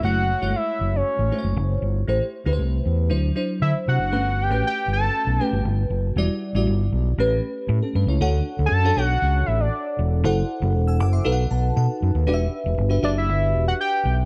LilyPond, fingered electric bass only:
\new Staff \with { instrumentName = "Fingered electric bass" } { \clef bass \time 4/4 \key d \major \tempo 4 = 118 fis,,8. g,,16 r8 fis,,8 r16 a,,16 r16 fis,,16 fis,,8 g,,8 | a,,16 r8 d,16 c,8 e,8 d,8 r8 d16 r16 c16 fis,,16 | g,,8. a,,16 r8 g,,8 r16 b,,16 r16 g,,16 g,,8 fis,,8 | e,,16 r8 a,,16 g,,8 b,,8 a,,8 r8 a,16 r16 g,16 cis,16 |
d,8 r16 d,16 fis,8 b,,8 cis,8 a,,8 r8 e,,8 | fis,,8 r16 fis,,16 e,,8 fis,,8 b,,8 b,,8 b,16 r16 fis,16 dis,16 | e,,8 r16 e,,16 g,,8 fis,,8 g,,8 e,,8 r8 b,,8 | }